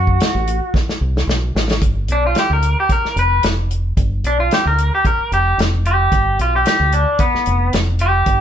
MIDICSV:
0, 0, Header, 1, 5, 480
1, 0, Start_track
1, 0, Tempo, 537442
1, 1625, Time_signature, 4, 2, 24, 8
1, 7508, End_track
2, 0, Start_track
2, 0, Title_t, "Clean electric guitar"
2, 0, Program_c, 0, 27
2, 0, Note_on_c, 0, 66, 125
2, 652, Note_off_c, 0, 66, 0
2, 1894, Note_on_c, 0, 62, 82
2, 2002, Note_off_c, 0, 62, 0
2, 2023, Note_on_c, 0, 65, 72
2, 2118, Note_off_c, 0, 65, 0
2, 2133, Note_on_c, 0, 67, 76
2, 2241, Note_off_c, 0, 67, 0
2, 2261, Note_on_c, 0, 70, 65
2, 2479, Note_off_c, 0, 70, 0
2, 2500, Note_on_c, 0, 67, 66
2, 2597, Note_off_c, 0, 67, 0
2, 2611, Note_on_c, 0, 70, 72
2, 2831, Note_off_c, 0, 70, 0
2, 2850, Note_on_c, 0, 71, 88
2, 3071, Note_off_c, 0, 71, 0
2, 3811, Note_on_c, 0, 62, 79
2, 3920, Note_off_c, 0, 62, 0
2, 3929, Note_on_c, 0, 65, 78
2, 4031, Note_off_c, 0, 65, 0
2, 4052, Note_on_c, 0, 67, 74
2, 4161, Note_off_c, 0, 67, 0
2, 4174, Note_on_c, 0, 70, 81
2, 4396, Note_off_c, 0, 70, 0
2, 4419, Note_on_c, 0, 67, 71
2, 4516, Note_off_c, 0, 67, 0
2, 4526, Note_on_c, 0, 70, 76
2, 4749, Note_off_c, 0, 70, 0
2, 4765, Note_on_c, 0, 67, 91
2, 4989, Note_off_c, 0, 67, 0
2, 5239, Note_on_c, 0, 67, 83
2, 5698, Note_off_c, 0, 67, 0
2, 5729, Note_on_c, 0, 65, 75
2, 5840, Note_off_c, 0, 65, 0
2, 5859, Note_on_c, 0, 67, 81
2, 5950, Note_off_c, 0, 67, 0
2, 5961, Note_on_c, 0, 67, 79
2, 6187, Note_off_c, 0, 67, 0
2, 6195, Note_on_c, 0, 62, 82
2, 6423, Note_off_c, 0, 62, 0
2, 6430, Note_on_c, 0, 59, 91
2, 6894, Note_off_c, 0, 59, 0
2, 7158, Note_on_c, 0, 67, 80
2, 7508, Note_off_c, 0, 67, 0
2, 7508, End_track
3, 0, Start_track
3, 0, Title_t, "Fingered electric bass"
3, 0, Program_c, 1, 33
3, 0, Note_on_c, 1, 42, 88
3, 159, Note_off_c, 1, 42, 0
3, 310, Note_on_c, 1, 33, 100
3, 529, Note_off_c, 1, 33, 0
3, 902, Note_on_c, 1, 36, 85
3, 1119, Note_off_c, 1, 36, 0
3, 1137, Note_on_c, 1, 35, 84
3, 1357, Note_off_c, 1, 35, 0
3, 1385, Note_on_c, 1, 33, 89
3, 1601, Note_off_c, 1, 33, 0
3, 1625, Note_on_c, 1, 31, 77
3, 1844, Note_off_c, 1, 31, 0
3, 1863, Note_on_c, 1, 35, 82
3, 2083, Note_off_c, 1, 35, 0
3, 2230, Note_on_c, 1, 38, 82
3, 2449, Note_off_c, 1, 38, 0
3, 2823, Note_on_c, 1, 29, 87
3, 3043, Note_off_c, 1, 29, 0
3, 3064, Note_on_c, 1, 29, 83
3, 3509, Note_off_c, 1, 29, 0
3, 3544, Note_on_c, 1, 31, 83
3, 3763, Note_off_c, 1, 31, 0
3, 3785, Note_on_c, 1, 35, 74
3, 4004, Note_off_c, 1, 35, 0
3, 4156, Note_on_c, 1, 38, 86
3, 4373, Note_off_c, 1, 38, 0
3, 4748, Note_on_c, 1, 29, 83
3, 4966, Note_off_c, 1, 29, 0
3, 4981, Note_on_c, 1, 29, 92
3, 5428, Note_off_c, 1, 29, 0
3, 5465, Note_on_c, 1, 31, 86
3, 5684, Note_off_c, 1, 31, 0
3, 5708, Note_on_c, 1, 35, 90
3, 5926, Note_off_c, 1, 35, 0
3, 6070, Note_on_c, 1, 38, 91
3, 6290, Note_off_c, 1, 38, 0
3, 6671, Note_on_c, 1, 29, 91
3, 6888, Note_off_c, 1, 29, 0
3, 6906, Note_on_c, 1, 29, 96
3, 7351, Note_off_c, 1, 29, 0
3, 7381, Note_on_c, 1, 31, 95
3, 7508, Note_off_c, 1, 31, 0
3, 7508, End_track
4, 0, Start_track
4, 0, Title_t, "Muted fingered electric bass strokes"
4, 790, Note_on_c, 9, 29, 40
4, 880, Note_off_c, 9, 29, 0
4, 2712, Note_on_c, 9, 29, 36
4, 2801, Note_off_c, 9, 29, 0
4, 4633, Note_on_c, 9, 29, 38
4, 4723, Note_off_c, 9, 29, 0
4, 6557, Note_on_c, 9, 29, 34
4, 6646, Note_off_c, 9, 29, 0
4, 7508, End_track
5, 0, Start_track
5, 0, Title_t, "Drums"
5, 65, Note_on_c, 9, 36, 78
5, 155, Note_off_c, 9, 36, 0
5, 181, Note_on_c, 9, 42, 77
5, 194, Note_on_c, 9, 38, 105
5, 270, Note_off_c, 9, 42, 0
5, 284, Note_off_c, 9, 38, 0
5, 423, Note_on_c, 9, 42, 63
5, 513, Note_off_c, 9, 42, 0
5, 661, Note_on_c, 9, 36, 103
5, 672, Note_on_c, 9, 38, 57
5, 750, Note_off_c, 9, 36, 0
5, 761, Note_off_c, 9, 38, 0
5, 799, Note_on_c, 9, 38, 58
5, 888, Note_off_c, 9, 38, 0
5, 1046, Note_on_c, 9, 38, 63
5, 1135, Note_off_c, 9, 38, 0
5, 1156, Note_on_c, 9, 38, 80
5, 1245, Note_off_c, 9, 38, 0
5, 1397, Note_on_c, 9, 38, 88
5, 1487, Note_off_c, 9, 38, 0
5, 1526, Note_on_c, 9, 38, 88
5, 1615, Note_off_c, 9, 38, 0
5, 1620, Note_on_c, 9, 42, 86
5, 1624, Note_on_c, 9, 36, 110
5, 1710, Note_off_c, 9, 42, 0
5, 1713, Note_off_c, 9, 36, 0
5, 1859, Note_on_c, 9, 42, 61
5, 1949, Note_off_c, 9, 42, 0
5, 2097, Note_on_c, 9, 42, 81
5, 2111, Note_on_c, 9, 38, 88
5, 2187, Note_off_c, 9, 42, 0
5, 2200, Note_off_c, 9, 38, 0
5, 2345, Note_on_c, 9, 42, 59
5, 2434, Note_off_c, 9, 42, 0
5, 2585, Note_on_c, 9, 36, 99
5, 2585, Note_on_c, 9, 42, 78
5, 2674, Note_off_c, 9, 36, 0
5, 2674, Note_off_c, 9, 42, 0
5, 2726, Note_on_c, 9, 38, 30
5, 2815, Note_off_c, 9, 38, 0
5, 2829, Note_on_c, 9, 42, 58
5, 2918, Note_off_c, 9, 42, 0
5, 3063, Note_on_c, 9, 42, 81
5, 3077, Note_on_c, 9, 38, 100
5, 3152, Note_off_c, 9, 42, 0
5, 3166, Note_off_c, 9, 38, 0
5, 3310, Note_on_c, 9, 42, 59
5, 3399, Note_off_c, 9, 42, 0
5, 3547, Note_on_c, 9, 36, 100
5, 3547, Note_on_c, 9, 42, 80
5, 3636, Note_off_c, 9, 36, 0
5, 3637, Note_off_c, 9, 42, 0
5, 3788, Note_on_c, 9, 42, 56
5, 3878, Note_off_c, 9, 42, 0
5, 4029, Note_on_c, 9, 42, 67
5, 4042, Note_on_c, 9, 38, 106
5, 4118, Note_off_c, 9, 42, 0
5, 4132, Note_off_c, 9, 38, 0
5, 4272, Note_on_c, 9, 42, 62
5, 4362, Note_off_c, 9, 42, 0
5, 4507, Note_on_c, 9, 36, 105
5, 4510, Note_on_c, 9, 42, 77
5, 4597, Note_off_c, 9, 36, 0
5, 4599, Note_off_c, 9, 42, 0
5, 4753, Note_on_c, 9, 42, 54
5, 4842, Note_off_c, 9, 42, 0
5, 4992, Note_on_c, 9, 42, 75
5, 5005, Note_on_c, 9, 38, 100
5, 5081, Note_off_c, 9, 42, 0
5, 5095, Note_off_c, 9, 38, 0
5, 5228, Note_on_c, 9, 42, 51
5, 5318, Note_off_c, 9, 42, 0
5, 5464, Note_on_c, 9, 42, 81
5, 5465, Note_on_c, 9, 36, 113
5, 5553, Note_off_c, 9, 42, 0
5, 5554, Note_off_c, 9, 36, 0
5, 5709, Note_on_c, 9, 42, 68
5, 5798, Note_off_c, 9, 42, 0
5, 5944, Note_on_c, 9, 42, 87
5, 5957, Note_on_c, 9, 38, 105
5, 6033, Note_off_c, 9, 42, 0
5, 6046, Note_off_c, 9, 38, 0
5, 6182, Note_on_c, 9, 42, 65
5, 6272, Note_off_c, 9, 42, 0
5, 6419, Note_on_c, 9, 42, 85
5, 6422, Note_on_c, 9, 36, 115
5, 6508, Note_off_c, 9, 42, 0
5, 6511, Note_off_c, 9, 36, 0
5, 6563, Note_on_c, 9, 38, 34
5, 6653, Note_off_c, 9, 38, 0
5, 6660, Note_on_c, 9, 42, 63
5, 6749, Note_off_c, 9, 42, 0
5, 6903, Note_on_c, 9, 42, 87
5, 6916, Note_on_c, 9, 38, 98
5, 6992, Note_off_c, 9, 42, 0
5, 7005, Note_off_c, 9, 38, 0
5, 7134, Note_on_c, 9, 42, 61
5, 7223, Note_off_c, 9, 42, 0
5, 7377, Note_on_c, 9, 42, 79
5, 7380, Note_on_c, 9, 36, 96
5, 7466, Note_off_c, 9, 42, 0
5, 7470, Note_off_c, 9, 36, 0
5, 7508, End_track
0, 0, End_of_file